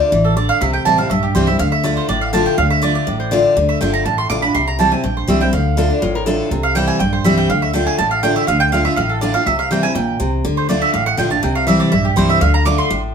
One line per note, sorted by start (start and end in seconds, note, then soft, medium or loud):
0.00 0.10 D3 medium
0.00 0.11 A3 medium
0.00 0.11 D4 medium
0.00 0.12 F4 medium
0.00 0.17 D5 loud
0.12 0.49 A1 medium
0.12 0.36 E3 medium
0.24 0.36 A4 medium
0.37 0.60 D3 medium
0.37 0.49 D5 medium
0.49 0.60 F5 loud
0.61 0.80 C2 medium
0.61 1.08 C3 medium
0.61 0.73 E5 medium
0.73 0.85 G5 medium
0.85 1.07 A1 medium
0.85 0.98 E3 medium
0.85 0.98 G3 medium
0.85 0.99 C4 medium
0.85 0.97 E4 medium
0.85 0.98 A5 loud
0.98 1.11 C4 medium
0.98 1.10 E4 medium
0.98 1.09 F5 loud
1.10 1.31 A#1 medium
1.10 1.58 G2 medium
1.10 1.22 E5 medium
1.23 1.35 G4 medium
1.35 1.56 C2 medium
1.35 1.47 E3 medium
1.35 1.47 G3 loud
1.35 1.48 C4 loud
1.35 1.46 E4 medium
1.35 1.47 C5 medium
1.47 1.60 C4 medium
1.47 1.59 E4 medium
1.47 1.59 E5 medium
1.59 1.96 D2 loud
1.59 1.82 D3 medium
1.59 1.71 F5 loud
1.72 1.84 E5 medium
1.84 2.07 D3 medium
1.84 2.08 A3 loud
1.84 2.08 D4 loud
1.84 2.08 F4 medium
1.84 1.96 D5 medium
1.97 2.08 C5 medium
2.08 2.45 A1 medium
2.08 2.56 A2 medium
2.08 2.21 D5 medium
2.21 2.33 F5 medium
2.33 2.57 D3 medium
2.33 2.57 A3 loud
2.33 2.57 D4 loud
2.33 2.58 F4 loud
2.33 2.46 A5 loud
2.46 2.57 G5 loud
2.58 2.95 D2 loud
2.58 2.80 D3 medium
2.58 2.70 F5 medium
2.70 2.82 E5 medium
2.82 3.06 D3 medium
2.82 3.06 A3 medium
2.82 3.06 D4 loud
2.82 3.07 F4 medium
2.82 2.94 D5 medium
2.95 3.29 D5 medium
3.07 3.44 A1 medium
3.07 3.54 A2 medium
3.20 3.32 C5 medium
3.31 3.55 D3 medium
3.31 3.55 A3 loud
3.31 3.56 D4 loud
3.31 3.56 F4 loud
3.31 3.60 D5 loud
3.56 3.75 D2 loud
3.56 3.79 D3 medium
3.69 3.81 E5 medium
3.81 4.02 G1 medium
3.81 4.04 D3 medium
3.81 4.05 A3 medium
3.81 4.05 D4 medium
3.81 4.05 F4 loud
3.81 3.93 G5 medium
3.94 4.05 A#5 loud
4.05 4.26 A1 medium
4.05 4.53 A2 medium
4.05 4.18 A5 medium
4.18 4.29 C6 loud
4.30 4.51 A#1 medium
4.30 4.42 D3 medium
4.30 4.42 A3 loud
4.30 4.43 D4 medium
4.30 4.41 F4 loud
4.30 4.42 D6 loud
4.42 4.55 D4 medium
4.42 4.54 F4 medium
4.42 4.54 B5 loud
4.55 4.92 C2 loud
4.55 5.02 C3 medium
4.55 4.67 C6 loud
4.67 4.79 A#5 loud
4.79 4.91 E3 medium
4.79 4.92 G3 medium
4.79 4.92 C4 medium
4.79 4.90 E4 medium
4.79 4.91 A5 medium
4.91 5.04 C4 soft
4.91 5.03 E4 medium
4.91 5.03 G#5 medium
5.04 5.25 A#1 medium
5.04 5.51 G2 medium
5.04 5.16 G5 medium
5.17 5.28 C5 medium
5.28 5.49 C2 medium
5.28 5.40 E3 medium
5.28 5.41 G3 loud
5.28 5.41 C4 loud
5.28 5.39 E4 loud
5.28 5.41 E5 medium
5.41 5.53 C4 medium
5.41 5.52 E4 medium
5.41 5.52 G5 loud
5.53 5.90 D2 loud
5.53 5.76 D3 medium
5.53 5.88 F5 medium
5.77 6.01 D3 medium
5.77 6.01 A3 medium
5.77 6.01 D4 loud
5.77 6.02 F4 medium
5.77 5.91 A4 medium
5.90 6.03 D4 medium
6.02 6.39 A1 medium
6.02 6.49 A2 medium
6.02 6.15 F4 loud
6.15 6.26 A#4 loud
6.26 6.50 D3 medium
6.26 6.50 A3 loud
6.26 6.51 D4 loud
6.26 6.51 F4 loud
6.26 6.55 A4 loud
6.51 6.88 C2 medium
6.51 6.98 C3 medium
6.63 6.75 F5 loud
6.75 6.99 E3 medium
6.75 6.99 G3 medium
6.75 7.00 C4 medium
6.75 7.00 E4 loud
6.75 6.87 G5 medium
6.88 6.99 G#5 loud
6.99 7.21 A#1 medium
6.99 7.47 G2 medium
6.99 7.12 G5 medium
7.13 7.25 C5 medium
7.24 7.46 C2 medium
7.24 7.48 E3 medium
7.24 7.49 G3 medium
7.24 7.49 C4 loud
7.24 7.49 E4 loud
7.24 7.37 E5 medium
7.38 7.49 G5 loud
7.49 7.86 D2 loud
7.49 7.72 D3 medium
7.49 7.62 F5 medium
7.62 7.73 E5 medium
7.73 7.97 D3 medium
7.73 7.98 A3 medium
7.73 7.98 D4 medium
7.73 7.98 F4 loud
7.73 7.86 G5 medium
7.87 7.98 G#5 loud
7.98 8.36 A1 medium
7.98 8.46 A2 medium
7.98 8.10 A5 loud
8.11 8.22 F5 medium
8.23 8.47 D3 medium
8.23 8.47 A3 medium
8.23 8.47 D4 loud
8.23 8.48 F4 loud
8.23 8.35 G5 loud
8.36 8.47 E5 loud
8.47 8.85 D2 loud
8.47 8.71 D3 loud
8.47 8.60 F5 medium
8.60 8.72 G5 loud
8.72 8.85 D3 medium
8.72 8.85 A3 medium
8.72 8.85 D4 medium
8.72 8.84 F4 loud
8.72 8.84 F5 medium
8.85 8.97 D4 soft
8.85 8.97 F4 medium
8.85 8.96 E5 loud
8.96 9.34 A1 medium
8.96 9.44 A2 medium
8.96 9.09 F5 loud
9.09 9.21 A4 medium
9.21 9.34 D3 medium
9.21 9.34 A3 medium
9.21 9.34 D4 loud
9.21 9.33 F4 loud
9.21 9.34 D5 medium
9.34 9.47 D4 soft
9.34 9.46 F4 medium
9.34 9.46 F5 loud
9.46 9.83 C2 loud
9.46 9.93 C3 medium
9.46 9.58 E5 medium
9.59 9.70 F5 loud
9.71 9.83 E3 medium
9.71 9.83 G3 medium
9.71 9.84 C4 medium
9.71 9.82 E4 loud
9.71 9.83 G5 loud
9.83 9.96 C4 medium
9.83 9.95 E4 medium
9.83 9.94 G#5 loud
9.95 10.16 A#1 medium
9.95 10.19 A#2 medium
9.95 10.30 G5 medium
10.20 10.41 C2 medium
10.20 10.43 C3 medium
10.45 10.82 D2 medium
10.45 10.67 D3 medium
10.57 10.69 C5 medium
10.69 10.92 D3 medium
10.69 10.93 A3 medium
10.69 10.93 D4 loud
10.69 10.93 F4 medium
10.69 10.81 D5 medium
10.82 10.93 E5 loud
10.94 11.15 A1 medium
10.94 11.41 A2 medium
10.94 11.06 F5 medium
11.06 11.18 F#5 loud
11.17 11.39 A#1 medium
11.17 11.30 D3 medium
11.17 11.31 A3 medium
11.17 11.31 D4 loud
11.17 11.29 F4 loud
11.17 11.30 G5 medium
11.30 11.43 D4 medium
11.30 11.42 F4 medium
11.30 11.43 A5 loud
11.43 11.80 C2 medium
11.43 11.90 C3 medium
11.43 11.55 G5 medium
11.55 11.67 F5 loud
11.67 11.91 E3 medium
11.67 11.91 G3 medium
11.67 11.91 C4 loud
11.67 11.92 E4 medium
11.67 11.80 E5 loud
11.80 11.92 D5 medium
11.92 12.13 A#1 medium
11.92 12.39 G2 medium
11.92 12.04 E5 medium
12.05 12.16 G4 medium
12.16 12.38 C2 medium
12.16 12.40 E3 medium
12.16 12.40 G3 loud
12.16 12.41 C4 loud
12.16 12.41 E4 loud
12.16 12.29 C5 medium
12.29 12.41 E5 loud
12.41 12.78 D2 loud
12.41 12.64 D3 loud
12.41 12.54 F5 medium
12.54 12.65 A#5 loud
12.65 12.89 D3 medium
12.65 12.90 A3 medium
12.65 12.90 D4 loud
12.65 12.90 F4 loud
12.65 12.78 D6 loud
12.78 13.01 C6 loud
12.91 13.15 A1 medium
12.91 13.15 A2 medium